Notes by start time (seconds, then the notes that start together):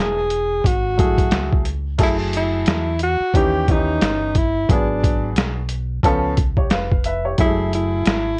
Already playing: E1 F#3 A3 E4 B4
0.00 G#4
0.30 closed hi-hat
0.64 G#1 F#4, kick, closed hi-hat
0.97 F#3 A3 E4 G#4, kick, closed hi-hat
1.18 kick, closed hi-hat
1.31 C#2, snare, closed hi-hat
1.52 kick
1.65 closed hi-hat
1.98 F#1 F#3 A3 E4 G#4, kick, closed hi-hat, crash
2.03 E4
2.33 E4, closed hi-hat
2.66 E2, snare, closed hi-hat
2.99 F#4, closed hi-hat
3.20 muted fingered electric bass stroke
3.34 D#2 E3 C#4 D#4 G4, kick, closed hi-hat
3.68 E3 C#4 D#4 G4, kick, closed hi-hat
4.01 G1, snare, closed hi-hat
4.35 E4, kick, closed hi-hat
4.69 G#1 F#3 B3 D4 G#4, kick, closed hi-hat
5.03 kick, closed hi-hat
5.36 B1, snare, closed hi-hat
5.69 closed hi-hat
6.03 C#2 F3 B3 C#4 A4, kick, closed hi-hat
6.37 kick, closed hi-hat
6.57 G4 C#5, kick
6.70 F1 B4 F5, snare, closed hi-hat
6.92 kick
7.04 B4 E5, closed hi-hat
7.25 G4 C#5
7.38 F#1 F#3 G#3 E4 G#4, kick, closed hi-hat
7.45 A3
7.73 E4, closed hi-hat
8.06 G#1, snare, closed hi-hat